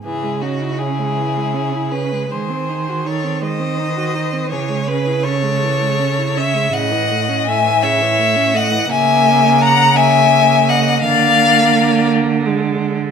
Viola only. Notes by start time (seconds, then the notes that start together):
0.05 E3
0.23 G#3
0.42 C#4
0.62 E4
0.81 C#4
0.99 G#3
1.17 E3
1.37 G#3
1.54 C#4
1.73 E4
1.92 C#4
2.12 G#3
2.30 G#3
2.50 C4
2.70 D#4
2.89 F#4
3.05 D#4
3.24 C4
3.42 G#3
3.60 C4
3.78 D#4
3.96 F#4
4.15 D#4
4.33 C4
4.52 E3
4.69 G#3
4.88 C#4
5.07 E4
5.25 C#4
5.43 G#3
5.62 E3
5.81 G#3
5.99 C#4
6.19 E4
6.37 C#4
6.55 G#3
6.73 C#3
6.92 E3
7.10 A3
7.29 C#4
7.47 A3
7.65 E3
7.84 C#3
8.02 E3
8.18 A3
8.36 C#4
8.54 A3
8.72 E3
8.91 A#3
9.97 A#3
11.04 A#3
12.46 G#3